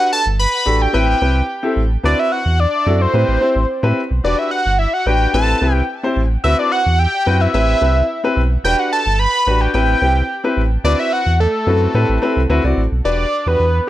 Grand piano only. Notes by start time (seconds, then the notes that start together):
Already playing: D4 F#4 G4 B4
0.65 D4 F#4 G4 A4
0.93 C4 E4 G4 B4
1.21 C4 E4 G4 B4
1.63 C4 E4 G4 A4
2.03 C4 E4 F#4 B4
2.86 C4 E4 F#4 A4
3.13 C4 E4 G4 B4
3.41 C4 E4 G4 C5
3.83 C4 E4 G4 B4
4.24 D4 F#4 G4 B4
5.06 D4 F#4 G4 B4
5.34 C4 E4 G4 B4
5.61 C4 E4 G4 B4
6.03 C4 E4 G4 C5
6.44 C4 E4 F#4 B4
7.26 C4 E4 F#4 B4
7.54 C4 E4 G4 B4
7.81 C4 E4 G4 B4
8.24 C4 E4 G4 B4
8.64 D4 F#4 G4 B4
9.47 D4 F#4 G4 B4
9.74 C4 E4 G4 B4
10.02 C4 E4 G4 B4
10.44 C4 E4 G4 B4
10.84 C4 E4 F#4 B4
11.67 C4 E4 F#4 B4
11.94 C4 E4 G4 B4
12.22 C4 E4 G4 B4
12.50 C4 E4 F#4 B4
12.64 C4 E4 F#4 D5
13.04 D4 F#4 G4 B4
13.47 D4 F#4 G4 B4